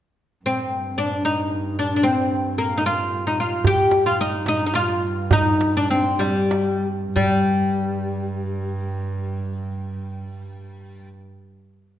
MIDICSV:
0, 0, Header, 1, 4, 480
1, 0, Start_track
1, 0, Tempo, 535236
1, 399, Time_signature, 6, 3, 24, 8
1, 3760, Tempo, 566038
1, 5200, Tempo, 631579
1, 6160, Tempo, 668896
1, 9631, End_track
2, 0, Start_track
2, 0, Title_t, "Oud"
2, 0, Program_c, 0, 24
2, 412, Note_on_c, 0, 60, 75
2, 878, Note_on_c, 0, 62, 76
2, 899, Note_off_c, 0, 60, 0
2, 1117, Note_off_c, 0, 62, 0
2, 1121, Note_on_c, 0, 63, 70
2, 1601, Note_off_c, 0, 63, 0
2, 1604, Note_on_c, 0, 62, 64
2, 1750, Note_off_c, 0, 62, 0
2, 1761, Note_on_c, 0, 62, 61
2, 1824, Note_on_c, 0, 60, 77
2, 1831, Note_off_c, 0, 62, 0
2, 2312, Note_off_c, 0, 60, 0
2, 2316, Note_on_c, 0, 58, 82
2, 2489, Note_on_c, 0, 63, 63
2, 2499, Note_off_c, 0, 58, 0
2, 2555, Note_off_c, 0, 63, 0
2, 2566, Note_on_c, 0, 65, 86
2, 2896, Note_off_c, 0, 65, 0
2, 2932, Note_on_c, 0, 63, 80
2, 3046, Note_off_c, 0, 63, 0
2, 3049, Note_on_c, 0, 65, 72
2, 3287, Note_off_c, 0, 65, 0
2, 3291, Note_on_c, 0, 67, 102
2, 3639, Note_off_c, 0, 67, 0
2, 3642, Note_on_c, 0, 65, 79
2, 3765, Note_off_c, 0, 65, 0
2, 3772, Note_on_c, 0, 63, 89
2, 3996, Note_off_c, 0, 63, 0
2, 4006, Note_on_c, 0, 63, 86
2, 4150, Note_off_c, 0, 63, 0
2, 4160, Note_on_c, 0, 63, 64
2, 4223, Note_off_c, 0, 63, 0
2, 4234, Note_on_c, 0, 65, 91
2, 4675, Note_off_c, 0, 65, 0
2, 4721, Note_on_c, 0, 63, 93
2, 5093, Note_off_c, 0, 63, 0
2, 5096, Note_on_c, 0, 62, 78
2, 5208, Note_off_c, 0, 62, 0
2, 5211, Note_on_c, 0, 60, 76
2, 5428, Note_on_c, 0, 55, 62
2, 5442, Note_off_c, 0, 60, 0
2, 5940, Note_off_c, 0, 55, 0
2, 6163, Note_on_c, 0, 55, 74
2, 8975, Note_off_c, 0, 55, 0
2, 9631, End_track
3, 0, Start_track
3, 0, Title_t, "Double bass"
3, 0, Program_c, 1, 43
3, 400, Note_on_c, 1, 43, 62
3, 3270, Note_off_c, 1, 43, 0
3, 3275, Note_on_c, 1, 43, 61
3, 6159, Note_off_c, 1, 43, 0
3, 6172, Note_on_c, 1, 43, 69
3, 8984, Note_off_c, 1, 43, 0
3, 9631, End_track
4, 0, Start_track
4, 0, Title_t, "Darbuka"
4, 3268, Note_on_c, 9, 64, 83
4, 3358, Note_off_c, 9, 64, 0
4, 3509, Note_on_c, 9, 63, 61
4, 3599, Note_off_c, 9, 63, 0
4, 3988, Note_on_c, 9, 63, 63
4, 4073, Note_off_c, 9, 63, 0
4, 4222, Note_on_c, 9, 63, 65
4, 4307, Note_off_c, 9, 63, 0
4, 4705, Note_on_c, 9, 64, 96
4, 4790, Note_off_c, 9, 64, 0
4, 4829, Note_on_c, 9, 62, 28
4, 4914, Note_off_c, 9, 62, 0
4, 4960, Note_on_c, 9, 63, 59
4, 5044, Note_off_c, 9, 63, 0
4, 5436, Note_on_c, 9, 63, 65
4, 5512, Note_off_c, 9, 63, 0
4, 5671, Note_on_c, 9, 63, 67
4, 5747, Note_off_c, 9, 63, 0
4, 6167, Note_on_c, 9, 64, 76
4, 6239, Note_off_c, 9, 64, 0
4, 9631, End_track
0, 0, End_of_file